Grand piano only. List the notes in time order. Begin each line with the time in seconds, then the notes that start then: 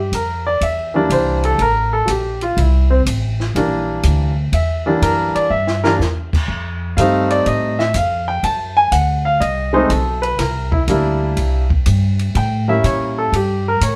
Already playing: G4
0.15 A#4
0.46 D5
0.63 E5
0.94 E3 G3 A#3 D4
1.12 C5
1.45 A4
1.61 A#4
1.93 A4
2.06 F#4
2.10 G4
2.42 F4
2.59 E4
2.90 C4
3.55 E3 G3 A#3 D4
4.54 E5
4.86 E3 G3 A#3 D4 G4
5.03 A#4
5.35 D5
5.51 E5
5.84 E3 G3 A#3 D4 A#4
6.97 G3 A3 C4 D#4 F5
7.31 D5
7.47 D#5
7.79 E5
7.96 F5
8.28 G5
8.44 A5
8.77 G#5
8.92 F#5
9.25 F5
9.40 D#5
9.73 G#3 A3 C4 D#4 C5
9.89 A4
10.22 B4
10.39 A#4
10.72 E4
10.88 G3 A#3 D4 E4
12.37 G5
12.68 G3 A#3 C#4 E4 E5
12.85 C#5
13.18 A4
13.36 G4
13.68 A#4
13.83 C#5